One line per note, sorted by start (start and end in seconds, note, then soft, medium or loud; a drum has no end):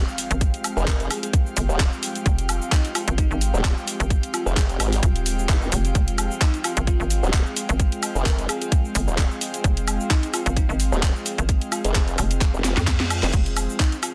0.00 14.14 G#3 medium
0.00 14.14 C4 medium
0.00 13.29 F4 medium
0.00 5.94 G4 medium
0.00 14.14 F5 medium
0.00 14.14 G5 medium
0.00 impact medium
0.08 cabasa soft
0.18 open hi-hat loud
0.18 cabasa medium
0.31 0.52 G#1 loud
0.31 closed hi-hat soft
0.31 cabasa soft
0.41 kick loud
0.41 closed hi-hat medium
0.41 cabasa soft
0.54 closed hi-hat medium
0.54 cabasa soft
0.64 open hi-hat loud
0.64 cabasa medium
0.64 high woodblock medium
0.77 1.09 F1 loud
0.77 cabasa soft
0.87 1.04 A#4 medium
0.87 kick loud
0.87 clap loud
0.87 closed hi-hat medium
0.87 cabasa soft
1.00 closed hi-hat soft
1.00 cabasa soft
1.10 1.18 G#4 medium
1.10 open hi-hat loud
1.10 cabasa medium
1.10 high woodblock medium
1.23 1.30 G#4 medium
1.23 closed hi-hat medium
1.23 cabasa soft
1.33 kick loud
1.33 closed hi-hat medium
1.33 cabasa soft
1.46 cabasa soft
1.57 1.67 G1 loud
1.57 open hi-hat loud
1.57 cabasa medium
1.69 1.90 D#1 loud
1.69 cabasa soft
1.80 kick loud
1.80 clap loud
1.80 closed hi-hat medium
1.80 cabasa soft
1.93 cabasa soft
2.03 open hi-hat loud
2.03 cabasa medium
2.15 closed hi-hat soft
2.15 cabasa soft
2.26 2.59 F1 loud
2.26 kick loud
2.26 closed hi-hat medium
2.26 cabasa soft
2.38 closed hi-hat medium
2.38 cabasa soft
2.49 open hi-hat loud
2.49 cabasa medium
2.49 high woodblock medium
2.62 cabasa soft
2.72 2.88 D#4 loud
2.72 kick loud
2.72 clap loud
2.72 closed hi-hat medium
2.72 cabasa soft
2.85 closed hi-hat soft
2.85 cabasa soft
2.95 3.03 F4 medium
2.95 open hi-hat loud
2.95 cabasa medium
2.95 high woodblock medium
3.08 3.29 G#1 loud
3.08 3.14 F4 medium
3.08 closed hi-hat medium
3.08 cabasa soft
3.18 3.26 D#4 medium
3.18 kick loud
3.18 closed hi-hat medium
3.18 cabasa soft
3.31 3.52 G#1 medium
3.31 3.37 D#4 medium
3.31 cabasa soft
3.41 open hi-hat loud
3.41 cabasa medium
3.54 3.75 D#1 loud
3.54 cabasa soft
3.64 kick loud
3.64 clap loud
3.64 closed hi-hat medium
3.64 cabasa soft
3.77 cabasa soft
3.88 open hi-hat loud
3.88 cabasa medium
4.00 4.21 G#1 loud
4.00 closed hi-hat soft
4.00 cabasa soft
4.10 kick loud
4.10 closed hi-hat medium
4.10 cabasa soft
4.23 closed hi-hat soft
4.23 cabasa soft
4.34 4.44 F4 medium
4.34 open hi-hat loud
4.34 cabasa medium
4.34 high woodblock medium
4.46 4.78 F1 loud
4.46 4.53 G#4 medium
4.46 cabasa soft
4.57 4.65 G#4 medium
4.57 kick loud
4.57 clap loud
4.57 closed hi-hat medium
4.57 cabasa soft
4.69 closed hi-hat soft
4.69 cabasa soft
4.80 5.01 G#1 loud
4.80 open hi-hat loud
4.80 cabasa medium
4.80 high woodblock medium
4.93 open hi-hat medium
4.93 cabasa soft
5.03 5.47 D#1 loud
5.03 kick loud
5.03 closed hi-hat medium
5.03 cabasa soft
5.16 closed hi-hat soft
5.16 cabasa soft
5.26 open hi-hat loud
5.26 cabasa medium
5.39 cabasa soft
5.49 5.70 F1 loud
5.49 kick loud
5.49 clap loud
5.49 closed hi-hat medium
5.49 cabasa soft
5.62 cabasa soft
5.72 5.93 F1 loud
5.72 open hi-hat loud
5.72 cabasa medium
5.85 closed hi-hat soft
5.85 cabasa soft
5.95 6.29 F1 medium
5.95 13.32 G#4 medium
5.95 kick loud
5.95 closed hi-hat medium
5.95 cabasa soft
6.08 closed hi-hat medium
6.08 cabasa soft
6.18 open hi-hat loud
6.18 cabasa medium
6.18 high woodblock medium
6.31 cabasa soft
6.41 6.58 D#4 medium
6.41 kick loud
6.41 clap loud
6.41 closed hi-hat medium
6.41 cabasa soft
6.54 closed hi-hat soft
6.54 cabasa soft
6.64 6.72 F4 medium
6.64 open hi-hat loud
6.64 cabasa medium
6.64 high woodblock medium
6.77 6.98 G#1 loud
6.77 6.84 F4 medium
6.77 closed hi-hat soft
6.77 cabasa soft
6.87 7.04 F4 medium
6.87 kick loud
6.87 closed hi-hat medium
6.87 cabasa soft
7.00 7.21 G#1 loud
7.00 cabasa soft
7.10 open hi-hat loud
7.10 cabasa medium
7.23 7.44 D#1 loud
7.23 cabasa soft
7.33 kick loud
7.33 clap loud
7.33 closed hi-hat medium
7.33 cabasa soft
7.46 cabasa soft
7.57 open hi-hat loud
7.57 cabasa medium
7.69 7.90 G#1 loud
7.69 closed hi-hat soft
7.69 cabasa soft
7.80 kick loud
7.80 closed hi-hat medium
7.80 cabasa soft
7.92 closed hi-hat medium
7.92 cabasa soft
8.03 open hi-hat loud
8.03 cabasa medium
8.03 high woodblock medium
8.15 8.47 F1 medium
8.15 cabasa soft
8.26 8.42 A#4 medium
8.26 kick loud
8.26 clap loud
8.26 closed hi-hat medium
8.26 cabasa soft
8.39 closed hi-hat soft
8.39 cabasa soft
8.49 8.57 G#4 medium
8.49 open hi-hat loud
8.49 cabasa medium
8.49 high woodblock medium
8.61 8.68 G#4 medium
8.61 closed hi-hat medium
8.61 cabasa soft
8.72 kick loud
8.72 closed hi-hat medium
8.72 cabasa soft
8.85 cabasa soft
8.95 9.06 G1 loud
8.95 open hi-hat loud
8.95 cabasa medium
9.08 9.29 D#1 loud
9.08 cabasa soft
9.18 kick loud
9.18 clap loud
9.18 closed hi-hat medium
9.18 cabasa soft
9.31 cabasa soft
9.41 open hi-hat loud
9.41 cabasa medium
9.54 closed hi-hat soft
9.54 cabasa soft
9.64 9.98 F1 loud
9.64 kick loud
9.64 closed hi-hat medium
9.64 cabasa soft
9.77 closed hi-hat medium
9.77 cabasa soft
9.88 open hi-hat loud
9.88 cabasa medium
9.88 high woodblock medium
10.00 cabasa soft
10.10 10.27 D#4 medium
10.10 kick loud
10.10 clap loud
10.10 closed hi-hat medium
10.10 cabasa soft
10.23 closed hi-hat soft
10.23 cabasa soft
10.33 10.42 F4 medium
10.33 open hi-hat loud
10.33 cabasa medium
10.33 high woodblock medium
10.46 10.67 G#1 loud
10.46 10.53 F4 medium
10.46 closed hi-hat medium
10.46 cabasa soft
10.56 10.65 D#4 medium
10.56 kick loud
10.56 closed hi-hat medium
10.56 cabasa soft
10.69 10.90 G#1 loud
10.69 10.76 D#4 medium
10.69 cabasa soft
10.80 open hi-hat loud
10.80 cabasa medium
10.92 11.13 D#1 loud
10.92 cabasa soft
11.03 kick loud
11.03 clap loud
11.03 closed hi-hat medium
11.03 cabasa soft
11.16 cabasa soft
11.26 open hi-hat loud
11.26 cabasa medium
11.38 11.59 G#1 loud
11.38 closed hi-hat soft
11.38 cabasa soft
11.49 kick loud
11.49 closed hi-hat medium
11.49 cabasa soft
11.61 closed hi-hat medium
11.61 cabasa soft
11.72 11.82 F4 medium
11.72 open hi-hat loud
11.72 cabasa medium
11.72 high woodblock medium
11.84 12.17 F1 loud
11.84 11.91 G#4 medium
11.84 closed hi-hat soft
11.84 cabasa soft
11.95 12.03 G#4 medium
11.95 kick loud
11.95 clap loud
11.95 closed hi-hat medium
11.95 cabasa soft
12.08 closed hi-hat soft
12.08 cabasa soft
12.18 12.52 F1 loud
12.18 open hi-hat loud
12.18 cabasa medium
12.18 high woodblock medium
12.31 closed hi-hat medium
12.31 cabasa soft
12.41 kick loud
12.41 clap medium
12.41 closed hi-hat medium
12.41 reverse cymbal medium
12.41 cabasa soft
12.54 12.75 F1 loud
12.54 cabasa soft
12.64 snare medium
12.64 open hi-hat loud
12.64 cabasa medium
12.77 13.21 F2 medium
12.77 snare medium
12.77 closed hi-hat soft
12.77 cabasa soft
12.87 kick loud
12.87 snare medium
12.87 clap loud
12.87 closed hi-hat medium
12.87 cabasa soft
13.00 snare medium
13.00 closed hi-hat soft
13.00 cabasa soft
13.10 open hi-hat loud
13.10 cabasa medium
13.10 high woodblock medium
13.23 13.32 F1 medium
13.23 snare medium
13.23 closed hi-hat soft
13.23 cabasa soft
13.33 13.67 F1 medium
13.33 14.14 D#4 medium
13.33 14.14 G4 medium
13.33 kick loud
13.33 closed hi-hat medium
13.33 crash medium
13.33 cabasa soft
13.46 closed hi-hat medium
13.46 cabasa soft
13.57 open hi-hat loud
13.57 cabasa medium
13.57 high woodblock medium
13.70 cabasa soft
13.80 13.96 D#4 loud
13.80 kick loud
13.80 clap loud
13.80 closed hi-hat medium
13.80 cabasa soft
13.92 closed hi-hat soft
13.92 cabasa soft
14.03 14.11 F4 medium
14.03 open hi-hat loud
14.03 cabasa medium
14.03 high woodblock medium